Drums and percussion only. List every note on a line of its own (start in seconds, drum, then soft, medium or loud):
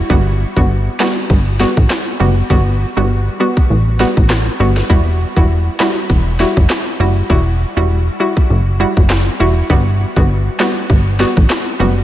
0.10 kick loud
0.57 kick medium
1.00 snare loud
1.00 clap loud
1.30 kick loud
1.60 snare medium
1.77 kick loud
1.90 snare loud
1.90 clap medium
2.50 kick loud
3.57 kick medium
4.00 snare medium
4.17 kick loud
4.30 cross-stick medium
4.30 snare loud
4.30 clap medium
4.77 snare medium
4.90 kick loud
5.37 kick medium
5.80 snare loud
5.80 clap loud
6.10 kick loud
6.40 snare medium
6.57 kick loud
6.70 snare loud
6.70 clap medium
7.30 kick loud
8.37 kick loud
8.97 kick loud
9.10 snare loud
9.10 clap medium
9.70 kick loud
10.16 kick medium
10.60 snare loud
10.60 clap loud
10.90 kick loud
11.20 snare medium
11.37 kick loud
11.50 snare loud
11.50 clap medium